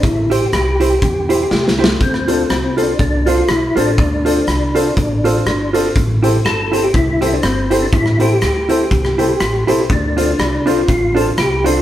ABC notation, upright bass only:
X:1
M:4/4
L:1/8
Q:"Swing" 1/4=122
K:Am
V:1 name="Upright bass" clef=bass
A,,,2 C,,2 E,,2 C,,2 | D,,2 C,,2 C,,2 B,,, A,,, | D,,2 C,,2 A,,,2 G,,,2 | A,,,2 G,,,2 C,,2 G,,,2 |
A,,,2 D,,2 C,,2 A,,, B,,, | D,,2 C,,2 A,,,2 C,,2 |]